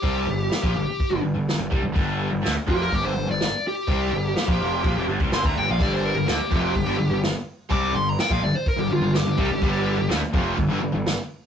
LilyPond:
<<
  \new Staff \with { instrumentName = "Lead electric guitar" } { \time 4/4 \key g \minor \tempo 4 = 125 g'2~ g'8 r4. | r4. g'16 bes'16 g'16 c''8 d''8. g'8~ | g'2~ g'8 r8 c'''16 bes''16 g''16 f''16 | d''16 c''16 bes'8 g'2 r4 |
d'''8 c'''16 bes''16 g''16 f''16 d''16 c''16 bes'16 g'16 f'8 g'4~ | g'4 r2. | }
  \new Staff \with { instrumentName = "Distorted electric guitar" } { \clef bass \time 4/4 \key g \minor <c g c'>8 <g, d>8 r16 <bes, f>16 <g, d>16 r8 <g, d>16 <g, d>16 <g, d>8 <g, d>16 <c g>16 <g, d>16 | <g, d g>8. <g, d>16 <d a>16 r16 <f, c f>8 <g, d>16 <g, d>16 <g, d>16 <g, d>8 r8. | <c g c'>8 <g, d>8 r16 <bes, f>16 <f, c f>8 <bes, f>16 <f, c>16 <g, d>16 <c g>16 <g, d>16 <d a>16 <g, d>16 <bes, f>16 | <g, d g>8. <g, d>16 <d a>16 r16 <f, c f>8 <g, d>16 <g, d>16 <g, d>16 <g, d>8 r8. |
<c g c'>8 <g, d>8 r16 <bes, f>16 <g, d>16 r8 <g, d>16 <g, d>16 <g, d>8 <g, d>16 <c g>16 <g, d>16 | <g, d g>8. <g, d>16 <d a>16 r16 <f, c f>8 <g, d>16 <g, d>16 <g, d>16 <g, d>8 r8. | }
  \new Staff \with { instrumentName = "Distorted electric guitar" } { \clef bass \time 4/4 \key g \minor r1 | r1 | r1 | <g, d g>8. <g, d>16 <d a>16 r16 <f, c f>8 <g, d>16 <g, d>16 <g, d>16 <g, d>8 r8. |
<c g c'>8 <g, d>8 r16 <bes, f>16 <g, d>16 r8 <g, d>16 <g, d>16 <g, d>8 <g, d>16 <c g>16 <g, d>16 | <g, d g>8. <g, d>16 <d a>16 r16 <f, c f>8 <g, d>16 <g, d>16 <g, d>16 <g, d>8 r8. | }
  \new Staff \with { instrumentName = "Overdriven electric guitar" } { \clef bass \time 4/4 \key g \minor <c g c'>8 <g, d>8 r16 <bes, f>16 <g, d>16 r8 <g, d>16 <g, d>16 <g, d>8 <g, d>16 <c g>16 <g, d>16 | <g, d g>8. <g, d>16 <d a>16 r16 <f, c f>8 <g, d>16 <g, d>16 <g, d>16 <g, d>8 r8. | <c g c'>8 <g, d>8 r16 <bes, f>16 <f, c f>8 <bes, f>16 <f, c>16 <g, d>16 <c g>16 <g, d>16 <d a>16 <g, d>16 <bes, f>16 | <g, d g>8. <g, d>16 <d a>16 r16 <f, c f>8 <g, d>16 <g, d>16 <g, d>16 <g, d>8 r8. |
<c g c'>8 <g, d>8 r16 <bes, f>16 <g, d>16 r8 <g, d>16 <g, d>16 <g, d>8 <g, d>16 <c g>16 <g, d>16 | <g, d g>8. <g, d>16 <d a>16 r16 <f, c f>8 <g, d>16 <g, d>16 <g, d>16 <g, d>8 r8. | }
  \new Staff \with { instrumentName = "Picked electric bass" } { \clef bass \time 4/4 \key g \minor c,8 g,,8 r16 bes,,16 g,,16 r8 g,,16 g,,16 g,,8 g,,16 c,16 g,,16 | g,,8. g,,16 d,16 r16 f,,8 g,,16 g,,16 g,,16 g,,8 r8. | c,8 g,,8 r16 bes,,16 f,,8 bes,,16 f,,16 g,,16 c,16 g,,16 d,16 g,,16 bes,,16 | g,,8. g,,16 d,16 r16 f,,8 g,,16 g,,16 g,,16 g,,8 r8. |
c,8 g,,8 r16 bes,,16 g,,16 r8 g,,16 g,,16 g,,8 g,,16 c,16 g,,16 | g,,8. g,,16 d,16 r16 f,,8 g,,16 g,,16 g,,16 g,,8 r8. | }
  \new DrumStaff \with { instrumentName = "Drums" } \drummode { \time 4/4 <hho bd>4 <hho sn>16 bd8. <hho bd>4 <hho sn>8 bd8 | <hho bd>4 <hho sn>8 bd8 <hho bd>4 <hho sn>4 | <hho bd>4 <hho sn>16 bd8. <hho bd>8. bd16 <hho sn>16 bd8. | <cymc bd>4 <hho sn>8 bd8 <hho bd>4 <hho sn>4 |
<hho bd>4 <hho sn>16 bd8. <hho bd>4 <hho sn>8 bd8 | <hho bd>4 <hho sn>8 bd8 <hho bd>4 <hho sn>4 | }
>>